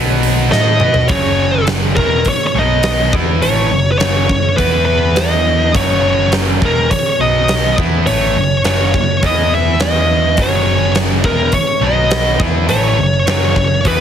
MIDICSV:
0, 0, Header, 1, 7, 480
1, 0, Start_track
1, 0, Tempo, 580271
1, 908, Time_signature, 4, 2, 24, 8
1, 11585, End_track
2, 0, Start_track
2, 0, Title_t, "Lead electric guitar"
2, 0, Program_c, 0, 29
2, 429, Note_on_c, 0, 75, 104
2, 892, Note_on_c, 0, 73, 100
2, 923, Note_off_c, 0, 75, 0
2, 1348, Note_off_c, 0, 73, 0
2, 1620, Note_on_c, 0, 70, 67
2, 1872, Note_off_c, 0, 70, 0
2, 1893, Note_on_c, 0, 73, 87
2, 2033, Note_off_c, 0, 73, 0
2, 2043, Note_on_c, 0, 73, 75
2, 2105, Note_off_c, 0, 73, 0
2, 2143, Note_on_c, 0, 75, 94
2, 2574, Note_off_c, 0, 75, 0
2, 2833, Note_on_c, 0, 73, 84
2, 3237, Note_off_c, 0, 73, 0
2, 3240, Note_on_c, 0, 71, 72
2, 3293, Note_off_c, 0, 71, 0
2, 3296, Note_on_c, 0, 73, 96
2, 3778, Note_off_c, 0, 73, 0
2, 3781, Note_on_c, 0, 71, 91
2, 4006, Note_off_c, 0, 71, 0
2, 4016, Note_on_c, 0, 71, 80
2, 4265, Note_on_c, 0, 75, 111
2, 4271, Note_off_c, 0, 71, 0
2, 4715, Note_off_c, 0, 75, 0
2, 4763, Note_on_c, 0, 73, 88
2, 5204, Note_off_c, 0, 73, 0
2, 5509, Note_on_c, 0, 70, 68
2, 5714, Note_off_c, 0, 70, 0
2, 5719, Note_on_c, 0, 73, 88
2, 5938, Note_off_c, 0, 73, 0
2, 5964, Note_on_c, 0, 75, 97
2, 6403, Note_off_c, 0, 75, 0
2, 6671, Note_on_c, 0, 73, 86
2, 7117, Note_off_c, 0, 73, 0
2, 7166, Note_on_c, 0, 73, 91
2, 7604, Note_off_c, 0, 73, 0
2, 7664, Note_on_c, 0, 75, 90
2, 7892, Note_off_c, 0, 75, 0
2, 7897, Note_on_c, 0, 76, 97
2, 8115, Note_off_c, 0, 76, 0
2, 8119, Note_on_c, 0, 75, 105
2, 8607, Note_off_c, 0, 75, 0
2, 8617, Note_on_c, 0, 73, 79
2, 9049, Note_off_c, 0, 73, 0
2, 9307, Note_on_c, 0, 70, 69
2, 9544, Note_off_c, 0, 70, 0
2, 9547, Note_on_c, 0, 73, 95
2, 9794, Note_off_c, 0, 73, 0
2, 9798, Note_on_c, 0, 75, 100
2, 10239, Note_off_c, 0, 75, 0
2, 10501, Note_on_c, 0, 73, 90
2, 10951, Note_off_c, 0, 73, 0
2, 11002, Note_on_c, 0, 73, 98
2, 11441, Note_off_c, 0, 73, 0
2, 11479, Note_on_c, 0, 71, 85
2, 11585, Note_off_c, 0, 71, 0
2, 11585, End_track
3, 0, Start_track
3, 0, Title_t, "Distorted electric guitar"
3, 0, Program_c, 1, 30
3, 0, Note_on_c, 1, 47, 98
3, 0, Note_on_c, 1, 54, 99
3, 0, Note_on_c, 1, 59, 92
3, 416, Note_off_c, 1, 54, 0
3, 420, Note_on_c, 1, 57, 102
3, 421, Note_off_c, 1, 47, 0
3, 424, Note_off_c, 1, 59, 0
3, 429, Note_on_c, 1, 64, 107
3, 431, Note_on_c, 1, 69, 98
3, 657, Note_off_c, 1, 57, 0
3, 661, Note_off_c, 1, 64, 0
3, 662, Note_off_c, 1, 69, 0
3, 675, Note_on_c, 1, 59, 92
3, 682, Note_on_c, 1, 66, 98
3, 691, Note_on_c, 1, 71, 102
3, 905, Note_off_c, 1, 59, 0
3, 908, Note_off_c, 1, 66, 0
3, 912, Note_off_c, 1, 71, 0
3, 914, Note_on_c, 1, 42, 88
3, 915, Note_on_c, 1, 49, 100
3, 923, Note_on_c, 1, 54, 96
3, 1625, Note_off_c, 1, 42, 0
3, 1625, Note_off_c, 1, 49, 0
3, 1629, Note_off_c, 1, 54, 0
3, 1642, Note_on_c, 1, 47, 78
3, 1643, Note_on_c, 1, 40, 84
3, 1651, Note_on_c, 1, 52, 84
3, 1869, Note_off_c, 1, 40, 0
3, 1869, Note_off_c, 1, 47, 0
3, 1873, Note_off_c, 1, 52, 0
3, 2114, Note_on_c, 1, 47, 90
3, 2125, Note_on_c, 1, 54, 94
3, 2130, Note_on_c, 1, 59, 95
3, 2585, Note_off_c, 1, 47, 0
3, 2586, Note_off_c, 1, 59, 0
3, 2591, Note_off_c, 1, 54, 0
3, 2593, Note_on_c, 1, 52, 84
3, 2596, Note_on_c, 1, 59, 88
3, 2604, Note_on_c, 1, 64, 99
3, 2817, Note_off_c, 1, 52, 0
3, 2820, Note_on_c, 1, 45, 93
3, 2826, Note_off_c, 1, 59, 0
3, 2830, Note_off_c, 1, 64, 0
3, 2830, Note_on_c, 1, 52, 93
3, 2834, Note_on_c, 1, 57, 87
3, 3058, Note_off_c, 1, 45, 0
3, 3063, Note_off_c, 1, 52, 0
3, 3065, Note_off_c, 1, 57, 0
3, 3073, Note_on_c, 1, 42, 61
3, 3078, Note_on_c, 1, 49, 61
3, 3264, Note_off_c, 1, 42, 0
3, 3266, Note_off_c, 1, 49, 0
3, 3308, Note_on_c, 1, 42, 78
3, 3310, Note_on_c, 1, 49, 81
3, 3318, Note_on_c, 1, 54, 84
3, 3533, Note_off_c, 1, 42, 0
3, 3536, Note_off_c, 1, 49, 0
3, 3543, Note_on_c, 1, 42, 61
3, 3546, Note_on_c, 1, 49, 61
3, 3547, Note_off_c, 1, 54, 0
3, 3739, Note_off_c, 1, 42, 0
3, 3741, Note_off_c, 1, 49, 0
3, 3786, Note_on_c, 1, 52, 81
3, 3797, Note_on_c, 1, 59, 97
3, 3802, Note_on_c, 1, 64, 98
3, 4736, Note_off_c, 1, 52, 0
3, 4736, Note_on_c, 1, 42, 84
3, 4739, Note_on_c, 1, 49, 89
3, 4743, Note_off_c, 1, 59, 0
3, 4746, Note_on_c, 1, 54, 100
3, 4749, Note_off_c, 1, 64, 0
3, 5456, Note_off_c, 1, 42, 0
3, 5458, Note_off_c, 1, 49, 0
3, 5461, Note_off_c, 1, 54, 0
3, 5475, Note_on_c, 1, 40, 85
3, 5483, Note_on_c, 1, 47, 93
3, 5489, Note_on_c, 1, 52, 98
3, 5706, Note_off_c, 1, 40, 0
3, 5710, Note_off_c, 1, 47, 0
3, 5712, Note_off_c, 1, 52, 0
3, 5961, Note_on_c, 1, 47, 85
3, 5968, Note_on_c, 1, 54, 95
3, 5974, Note_on_c, 1, 59, 86
3, 6428, Note_off_c, 1, 47, 0
3, 6431, Note_off_c, 1, 54, 0
3, 6434, Note_off_c, 1, 59, 0
3, 6442, Note_on_c, 1, 52, 84
3, 6448, Note_on_c, 1, 59, 89
3, 6453, Note_on_c, 1, 64, 107
3, 6668, Note_off_c, 1, 52, 0
3, 6671, Note_off_c, 1, 59, 0
3, 6674, Note_off_c, 1, 64, 0
3, 6679, Note_on_c, 1, 45, 86
3, 6685, Note_on_c, 1, 52, 83
3, 6690, Note_on_c, 1, 57, 101
3, 6907, Note_off_c, 1, 45, 0
3, 6910, Note_off_c, 1, 52, 0
3, 6913, Note_off_c, 1, 57, 0
3, 6924, Note_on_c, 1, 42, 53
3, 6929, Note_on_c, 1, 49, 78
3, 7109, Note_off_c, 1, 42, 0
3, 7111, Note_off_c, 1, 49, 0
3, 7149, Note_on_c, 1, 42, 82
3, 7151, Note_on_c, 1, 49, 82
3, 7158, Note_on_c, 1, 54, 100
3, 7381, Note_off_c, 1, 42, 0
3, 7382, Note_off_c, 1, 49, 0
3, 7386, Note_off_c, 1, 54, 0
3, 7400, Note_on_c, 1, 42, 58
3, 7400, Note_on_c, 1, 49, 65
3, 7586, Note_off_c, 1, 42, 0
3, 7586, Note_off_c, 1, 49, 0
3, 7630, Note_on_c, 1, 52, 93
3, 7637, Note_on_c, 1, 59, 79
3, 7641, Note_on_c, 1, 64, 88
3, 8581, Note_off_c, 1, 52, 0
3, 8581, Note_on_c, 1, 42, 88
3, 8583, Note_off_c, 1, 59, 0
3, 8585, Note_on_c, 1, 49, 96
3, 8586, Note_off_c, 1, 64, 0
3, 8586, Note_on_c, 1, 54, 91
3, 9296, Note_off_c, 1, 42, 0
3, 9298, Note_off_c, 1, 49, 0
3, 9299, Note_off_c, 1, 54, 0
3, 9300, Note_on_c, 1, 40, 76
3, 9310, Note_on_c, 1, 47, 95
3, 9317, Note_on_c, 1, 52, 89
3, 9536, Note_off_c, 1, 40, 0
3, 9541, Note_off_c, 1, 47, 0
3, 9544, Note_off_c, 1, 52, 0
3, 9776, Note_on_c, 1, 47, 96
3, 9785, Note_on_c, 1, 54, 88
3, 9788, Note_on_c, 1, 59, 99
3, 10244, Note_off_c, 1, 59, 0
3, 10245, Note_off_c, 1, 47, 0
3, 10248, Note_on_c, 1, 52, 83
3, 10251, Note_off_c, 1, 54, 0
3, 10254, Note_on_c, 1, 59, 83
3, 10255, Note_on_c, 1, 64, 89
3, 10476, Note_off_c, 1, 52, 0
3, 10482, Note_on_c, 1, 45, 92
3, 10483, Note_off_c, 1, 59, 0
3, 10486, Note_on_c, 1, 52, 99
3, 10492, Note_off_c, 1, 64, 0
3, 10496, Note_on_c, 1, 57, 100
3, 10727, Note_off_c, 1, 45, 0
3, 10729, Note_off_c, 1, 52, 0
3, 10733, Note_on_c, 1, 42, 69
3, 10734, Note_off_c, 1, 57, 0
3, 10737, Note_on_c, 1, 49, 66
3, 10932, Note_off_c, 1, 42, 0
3, 10934, Note_off_c, 1, 49, 0
3, 10976, Note_on_c, 1, 42, 83
3, 10983, Note_on_c, 1, 49, 84
3, 10988, Note_on_c, 1, 54, 108
3, 11208, Note_off_c, 1, 42, 0
3, 11210, Note_off_c, 1, 49, 0
3, 11218, Note_on_c, 1, 42, 62
3, 11220, Note_off_c, 1, 54, 0
3, 11220, Note_on_c, 1, 49, 60
3, 11414, Note_off_c, 1, 42, 0
3, 11415, Note_off_c, 1, 49, 0
3, 11470, Note_on_c, 1, 52, 83
3, 11474, Note_on_c, 1, 59, 103
3, 11478, Note_on_c, 1, 64, 101
3, 11585, Note_off_c, 1, 52, 0
3, 11585, Note_off_c, 1, 59, 0
3, 11585, Note_off_c, 1, 64, 0
3, 11585, End_track
4, 0, Start_track
4, 0, Title_t, "Picked electric bass"
4, 0, Program_c, 2, 34
4, 0, Note_on_c, 2, 35, 97
4, 396, Note_off_c, 2, 35, 0
4, 434, Note_on_c, 2, 45, 86
4, 654, Note_off_c, 2, 45, 0
4, 664, Note_on_c, 2, 47, 97
4, 889, Note_off_c, 2, 47, 0
4, 909, Note_on_c, 2, 30, 87
4, 1596, Note_off_c, 2, 30, 0
4, 1624, Note_on_c, 2, 28, 90
4, 1850, Note_off_c, 2, 28, 0
4, 2106, Note_on_c, 2, 35, 96
4, 2555, Note_off_c, 2, 35, 0
4, 2592, Note_on_c, 2, 40, 97
4, 2815, Note_off_c, 2, 40, 0
4, 2829, Note_on_c, 2, 33, 88
4, 3053, Note_off_c, 2, 33, 0
4, 3083, Note_on_c, 2, 30, 68
4, 3300, Note_off_c, 2, 30, 0
4, 3316, Note_on_c, 2, 30, 84
4, 3537, Note_off_c, 2, 30, 0
4, 3556, Note_on_c, 2, 30, 77
4, 3777, Note_off_c, 2, 30, 0
4, 3787, Note_on_c, 2, 40, 92
4, 4716, Note_off_c, 2, 40, 0
4, 4752, Note_on_c, 2, 30, 91
4, 5438, Note_off_c, 2, 30, 0
4, 5475, Note_on_c, 2, 28, 91
4, 5696, Note_off_c, 2, 28, 0
4, 5953, Note_on_c, 2, 35, 94
4, 6398, Note_off_c, 2, 35, 0
4, 6438, Note_on_c, 2, 40, 99
4, 6657, Note_off_c, 2, 40, 0
4, 6684, Note_on_c, 2, 33, 89
4, 6900, Note_off_c, 2, 33, 0
4, 6920, Note_on_c, 2, 30, 71
4, 7138, Note_off_c, 2, 30, 0
4, 7154, Note_on_c, 2, 30, 98
4, 7375, Note_off_c, 2, 30, 0
4, 7398, Note_on_c, 2, 30, 75
4, 7617, Note_off_c, 2, 30, 0
4, 7632, Note_on_c, 2, 40, 90
4, 8556, Note_off_c, 2, 40, 0
4, 8582, Note_on_c, 2, 30, 90
4, 9271, Note_off_c, 2, 30, 0
4, 9298, Note_on_c, 2, 28, 91
4, 9525, Note_off_c, 2, 28, 0
4, 9769, Note_on_c, 2, 35, 88
4, 10224, Note_off_c, 2, 35, 0
4, 10255, Note_on_c, 2, 40, 98
4, 10483, Note_off_c, 2, 40, 0
4, 10505, Note_on_c, 2, 33, 91
4, 10729, Note_off_c, 2, 33, 0
4, 10739, Note_on_c, 2, 30, 70
4, 10966, Note_off_c, 2, 30, 0
4, 10981, Note_on_c, 2, 30, 82
4, 11207, Note_off_c, 2, 30, 0
4, 11218, Note_on_c, 2, 30, 76
4, 11445, Note_off_c, 2, 30, 0
4, 11460, Note_on_c, 2, 40, 83
4, 11585, Note_off_c, 2, 40, 0
4, 11585, End_track
5, 0, Start_track
5, 0, Title_t, "Muted distorted electric guitar strokes"
5, 1885, Note_on_c, 9, 29, 57
5, 1968, Note_off_c, 9, 29, 0
5, 5725, Note_on_c, 9, 29, 60
5, 5808, Note_off_c, 9, 29, 0
5, 9549, Note_on_c, 9, 29, 58
5, 9632, Note_off_c, 9, 29, 0
5, 11585, End_track
6, 0, Start_track
6, 0, Title_t, "Muted picked electric bass strokes"
6, 1867, Note_on_c, 9, 29, 38
6, 1950, Note_off_c, 9, 29, 0
6, 5716, Note_on_c, 9, 29, 41
6, 5799, Note_off_c, 9, 29, 0
6, 9535, Note_on_c, 9, 29, 38
6, 9618, Note_off_c, 9, 29, 0
6, 11585, End_track
7, 0, Start_track
7, 0, Title_t, "Drums"
7, 191, Note_on_c, 9, 46, 61
7, 273, Note_off_c, 9, 46, 0
7, 430, Note_on_c, 9, 38, 66
7, 513, Note_off_c, 9, 38, 0
7, 660, Note_on_c, 9, 45, 88
7, 743, Note_off_c, 9, 45, 0
7, 778, Note_on_c, 9, 43, 94
7, 861, Note_off_c, 9, 43, 0
7, 896, Note_on_c, 9, 46, 56
7, 905, Note_on_c, 9, 36, 125
7, 979, Note_off_c, 9, 46, 0
7, 988, Note_off_c, 9, 36, 0
7, 1380, Note_on_c, 9, 46, 52
7, 1387, Note_on_c, 9, 38, 109
7, 1463, Note_off_c, 9, 46, 0
7, 1469, Note_off_c, 9, 38, 0
7, 1626, Note_on_c, 9, 36, 82
7, 1709, Note_off_c, 9, 36, 0
7, 1858, Note_on_c, 9, 46, 52
7, 1867, Note_on_c, 9, 36, 83
7, 1941, Note_off_c, 9, 46, 0
7, 1949, Note_off_c, 9, 36, 0
7, 2340, Note_on_c, 9, 46, 56
7, 2346, Note_on_c, 9, 38, 113
7, 2423, Note_off_c, 9, 46, 0
7, 2429, Note_off_c, 9, 38, 0
7, 2590, Note_on_c, 9, 36, 113
7, 2672, Note_off_c, 9, 36, 0
7, 2831, Note_on_c, 9, 46, 56
7, 2914, Note_off_c, 9, 46, 0
7, 3310, Note_on_c, 9, 46, 51
7, 3317, Note_on_c, 9, 38, 109
7, 3393, Note_off_c, 9, 46, 0
7, 3400, Note_off_c, 9, 38, 0
7, 3552, Note_on_c, 9, 36, 92
7, 3635, Note_off_c, 9, 36, 0
7, 3792, Note_on_c, 9, 36, 93
7, 3796, Note_on_c, 9, 46, 52
7, 3875, Note_off_c, 9, 36, 0
7, 3879, Note_off_c, 9, 46, 0
7, 4270, Note_on_c, 9, 46, 58
7, 4276, Note_on_c, 9, 38, 109
7, 4352, Note_off_c, 9, 46, 0
7, 4359, Note_off_c, 9, 38, 0
7, 4752, Note_on_c, 9, 46, 59
7, 4753, Note_on_c, 9, 36, 115
7, 4835, Note_off_c, 9, 46, 0
7, 4836, Note_off_c, 9, 36, 0
7, 5228, Note_on_c, 9, 46, 55
7, 5234, Note_on_c, 9, 38, 108
7, 5310, Note_off_c, 9, 46, 0
7, 5317, Note_off_c, 9, 38, 0
7, 5475, Note_on_c, 9, 36, 84
7, 5558, Note_off_c, 9, 36, 0
7, 5716, Note_on_c, 9, 36, 84
7, 5718, Note_on_c, 9, 46, 60
7, 5799, Note_off_c, 9, 36, 0
7, 5801, Note_off_c, 9, 46, 0
7, 6191, Note_on_c, 9, 46, 56
7, 6197, Note_on_c, 9, 38, 102
7, 6274, Note_off_c, 9, 46, 0
7, 6280, Note_off_c, 9, 38, 0
7, 6437, Note_on_c, 9, 36, 102
7, 6519, Note_off_c, 9, 36, 0
7, 6675, Note_on_c, 9, 46, 65
7, 6757, Note_off_c, 9, 46, 0
7, 7151, Note_on_c, 9, 46, 51
7, 7158, Note_on_c, 9, 38, 99
7, 7234, Note_off_c, 9, 46, 0
7, 7240, Note_off_c, 9, 38, 0
7, 7395, Note_on_c, 9, 36, 86
7, 7478, Note_off_c, 9, 36, 0
7, 7632, Note_on_c, 9, 46, 51
7, 7634, Note_on_c, 9, 36, 87
7, 7715, Note_off_c, 9, 46, 0
7, 7716, Note_off_c, 9, 36, 0
7, 8105, Note_on_c, 9, 46, 53
7, 8111, Note_on_c, 9, 38, 111
7, 8187, Note_off_c, 9, 46, 0
7, 8194, Note_off_c, 9, 38, 0
7, 8578, Note_on_c, 9, 46, 59
7, 8585, Note_on_c, 9, 36, 114
7, 8661, Note_off_c, 9, 46, 0
7, 8668, Note_off_c, 9, 36, 0
7, 9056, Note_on_c, 9, 46, 49
7, 9063, Note_on_c, 9, 38, 96
7, 9139, Note_off_c, 9, 46, 0
7, 9146, Note_off_c, 9, 38, 0
7, 9297, Note_on_c, 9, 36, 89
7, 9380, Note_off_c, 9, 36, 0
7, 9529, Note_on_c, 9, 46, 51
7, 9535, Note_on_c, 9, 36, 77
7, 9612, Note_off_c, 9, 46, 0
7, 9618, Note_off_c, 9, 36, 0
7, 10015, Note_on_c, 9, 46, 56
7, 10021, Note_on_c, 9, 38, 114
7, 10097, Note_off_c, 9, 46, 0
7, 10104, Note_off_c, 9, 38, 0
7, 10255, Note_on_c, 9, 36, 105
7, 10338, Note_off_c, 9, 36, 0
7, 10495, Note_on_c, 9, 46, 61
7, 10577, Note_off_c, 9, 46, 0
7, 10978, Note_on_c, 9, 46, 52
7, 10985, Note_on_c, 9, 38, 105
7, 11061, Note_off_c, 9, 46, 0
7, 11067, Note_off_c, 9, 38, 0
7, 11218, Note_on_c, 9, 36, 84
7, 11301, Note_off_c, 9, 36, 0
7, 11455, Note_on_c, 9, 46, 54
7, 11457, Note_on_c, 9, 36, 83
7, 11538, Note_off_c, 9, 46, 0
7, 11540, Note_off_c, 9, 36, 0
7, 11585, End_track
0, 0, End_of_file